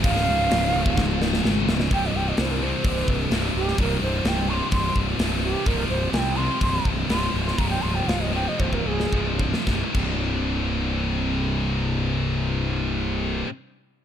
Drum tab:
CC |----------------|----------------|----------------|----------------|
HH |o---o-----------|o---o---o---o---|o---o---o---o---|o---o---o---o---|
SD |-o--o---o-ooo-oo|----o-------o--o|----o-------o---|----o-------o--o|
T1 |----------------|----------------|----------------|----------------|
BD |o------oo-------|o-------o-o-----|o-------o-o-----|o-------o-o-----|

CC |----------------|--x-------------|----------------|
HH |o---o-----------|----------------|----------------|
SD |----o------o---o|o---------------|----------------|
T1 |--------o-------|----------------|----------------|
BD |o-------oo--o-o-|o-o-------------|----------------|